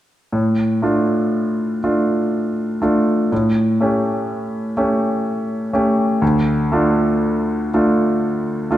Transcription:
grand piano
0.33 A2
0.82 A3 D4 F4
1.84 A3 D4 F4
2.82 A3 D4 F4
3.32 A2
3.80 A3 C#4 G4
4.77 A3 C#4 G4
5.73 A3 C#4 G4
6.22 D2
6.72 A3 D4 F4
7.74 A3 D4 F4
8.71 A3 D4 F4

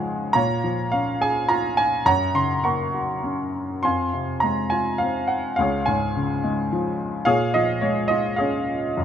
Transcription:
upright piano
Already playing: C#2 G#2 C#3 F3 G#3 G#4 C#5 F5 F#5 G#5
0.33 A#2 C#5 F5 A#5
0.64 F3
0.92 C#4 F5
1.21 G#4 G#5
1.49 F4 A#5
1.77 G#5
2.06 F#2 C#5 F#5 A#5
2.35 C#3 C6
2.64 A#3 F#5 A#5 C#6
2.94 F#4
3.23 C#4
3.83 F2 F5 G#5 C6
4.13 C3
4.40 G#3 A#5
4.70 F4 G#5
4.98 C4 F5
5.28 F#5
5.56 C#2 F5
5.60 G#4 C#5
5.86 G#2 C#5 F5 G#5
6.16 C#3
6.44 G#3
6.72 F3
7.25 A#2 G#4 C#5 F5
7.54 F3 D#5
7.81 G#3 C#5
8.08 F4 D#5
8.36 C#4 G#4 C#5 F5
8.97 F#2

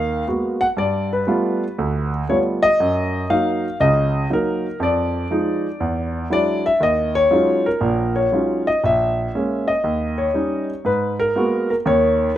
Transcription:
grand piano
Already playing: D#2 D#3 F5
0.27 G#3 A#3 B3 F#4
0.61 F#5
0.77 G2 D5
1.13 B4
1.27 G3 A3 B3 F4
1.78 D2
2.29 G3 A3 B3 F4 C#5
2.63 D#5
2.80 F#2
3.30 F#3 A#3 D#4 F5
3.80 C#2 C#3 D#5
4.30 F#3 A#3 D#4 A#4
4.80 F2 D5
5.31 F3 G#3 D#4
5.80 E2
6.30 F#3 G#3 D4 E4 D5
6.66 E5
6.80 D#2 D#5
7.15 C#5
7.31 F#3 G#3 C#4 D#4 F4
7.66 A#4
7.81 A#1 A#2
8.16 C#5
8.32 F#3 G#3 C#4 D#4 F4
8.67 D#5
8.84 A#1 E5
9.35 G#3 A#3 C#4
9.68 D#5
9.84 D#2
10.18 C#5
10.34 G3 C#4 D#4
10.85 G#2 B4
11.20 A#4
11.35 G#3 A#3 B3 F#4
11.70 A#4
11.86 D#2 D#3 C#5

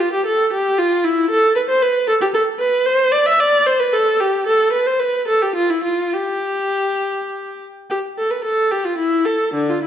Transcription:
viola
0.00 F4
0.13 G4
0.26 A4
0.53 G4
0.78 F4
1.04 E4
1.31 A4
1.56 B4
1.69 C5
1.82 B4
2.08 A4
2.21 G4
2.34 A4
2.59 B4
2.86 C5
3.12 D5
3.26 E5
3.39 D5
3.66 C5
3.80 B4
3.93 A4
4.20 G4
4.47 A4
4.73 B4
4.86 C5
5.00 B4
5.28 A4
5.42 G4
5.55 F4
5.70 E4
5.84 F4
6.13 G4
7.90 G4
8.18 A4
8.31 B4
8.44 A4
8.71 G4
8.85 F4
8.98 E4
9.25 A4
9.54 D3
9.69 F4
9.83 E4

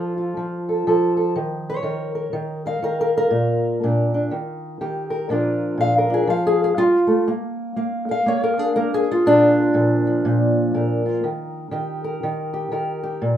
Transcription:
steel-string acoustic guitar
Already playing: F3 F4 A4
0.18 F4
0.37 F3
0.69 A4
0.87 F3 A4
1.17 A4
1.36 D#3
1.70 C#5
1.83 D#3 A#4
2.15 A#4
2.33 D#3
2.66 A#4 F5
2.83 D#3 A#4
3.01 A#4
3.17 A#4
3.31 A#2
3.83 A#2 D4
4.14 D4
4.31 D#3
4.81 D#3 G4
5.10 A#4
5.29 A#2 F3 D4 F4 A#4
5.78 A#2 F5
5.98 A#4
6.10 D4
6.14 G#4
6.27 F3 F5
6.47 G#4
6.64 G#4
6.77 G3 F4
7.07 A3
7.28 A#3
7.76 A#3 F5
8.09 A#4 F5
8.26 A#3 C#5
8.44 A#4
8.58 D4 G#4
8.76 A#3 A#4
8.94 G#4
9.11 F4
9.26 A#2 D4
9.74 A#2 F3
10.07 F3
10.25 A#2
10.74 A#2 A#4
11.06 F4
11.24 D#3
11.71 D#3 G4
12.04 A#4
12.23 D#3
12.54 G4
12.72 D#3 A#4
13.03 G4
13.22 A#2

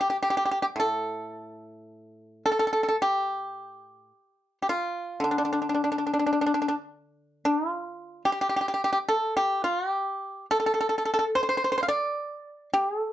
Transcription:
pipa
Already playing: D3
0.01 G4
0.10 G4
0.23 G4
0.30 G4
0.37 G4
0.45 G4
0.51 G4
0.62 G4
0.76 A2 A4
2.46 A4
2.52 A4
2.59 A4
2.67 A4
2.73 A4
2.83 A4
2.89 A4
3.02 G4
4.62 G4
4.69 F4
5.20 D3 D4
5.31 D4
5.38 D4
5.45 D4
5.53 D4
5.62 D4
5.69 D4
5.75 D4
5.84 D4
5.92 D4
5.98 D4
6.07 D4
6.14 D4
6.19 D4
6.26 D4
6.33 D4
6.41 D4
6.46 D4
6.54 D4
6.62 D4
6.68 D4
7.45 D4
7.69 F4
8.25 G4
8.32 G4
8.41 G4
8.49 G4
8.56 G4
8.61 G4
8.68 G4
8.74 G4
8.84 G4
8.93 G4
9.09 A4
9.37 G4
9.64 F4
9.88 G4
10.51 A4
10.60 A4
10.66 A4
10.74 A4
10.81 A4
10.89 A4
10.98 A4
11.05 A4
11.14 A4
11.19 A4
11.35 C5
11.43 C5
11.49 C5
11.57 C5
11.64 C5
11.72 C5
11.78 C5
11.83 F5
11.88 D5
12.74 G4
12.99 A4

